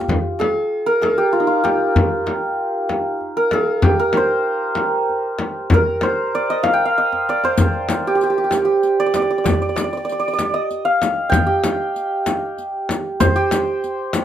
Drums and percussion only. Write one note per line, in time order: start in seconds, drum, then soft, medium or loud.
0.01 tombak ka medium
0.09 tombak dum medium
0.09 frame drum medium
0.39 tombak tek medium
0.39 frame drum medium
1.02 tombak tek medium
1.02 frame drum medium
1.33 tombak ka soft
1.65 tombak tek medium
1.65 frame drum medium
1.96 tombak dum medium
1.96 frame drum medium
2.27 tombak tek medium
2.27 frame drum medium
2.89 tombak tek medium
2.89 frame drum medium
3.21 tombak ka soft
3.51 tombak tek medium
3.51 frame drum medium
3.82 frame drum medium
3.82 tombak dum medium
4.13 tombak tek medium
4.13 frame drum medium
4.75 tombak tek medium
4.75 frame drum medium
5.09 tombak ka soft
5.39 tombak tek medium
5.39 frame drum medium
5.70 frame drum medium
5.70 tombak dum medium
6.01 tombak tek medium
6.01 frame drum medium
6.35 tombak ka soft
6.64 tombak tek medium
6.64 frame drum medium
6.98 tombak tek soft
7.13 tombak ka medium
7.29 tombak tek medium
7.44 tombak ka medium
7.57 riq medium
7.57 frame drum medium
7.57 tombak dum medium
7.89 riq soft
7.89 tombak tek medium
7.89 frame drum medium
8.21 riq soft
8.51 riq soft
8.51 tombak tek medium
8.51 frame drum medium
8.83 riq soft
9.14 riq soft
9.14 tombak tek medium
9.14 frame drum medium
9.46 riq medium
9.46 frame drum medium
9.46 tombak dum medium
9.77 riq soft
9.77 tombak tek medium
9.77 frame drum medium
10.09 riq soft
10.39 riq soft
10.39 tombak tek medium
10.39 frame drum medium
10.71 riq soft
10.71 tombak ka soft
11.02 riq soft
11.02 tombak tek medium
11.02 frame drum medium
11.32 riq medium
11.32 frame drum medium
11.32 tombak dum medium
11.64 riq medium
11.64 frame drum medium
11.96 riq soft
12.26 riq medium
12.26 tombak tek medium
12.26 frame drum medium
12.58 riq soft
12.58 tombak ka soft
12.89 riq soft
12.89 tombak tek medium
12.89 frame drum medium
13.20 riq medium
13.20 frame drum medium
13.20 tombak dum loud
13.36 riq soft
13.36 tombak ka soft
13.51 riq medium
13.51 tombak tek medium
13.51 frame drum medium
13.84 riq soft
13.84 tombak ka soft
14.13 riq medium
14.13 tombak tek medium
14.13 frame drum medium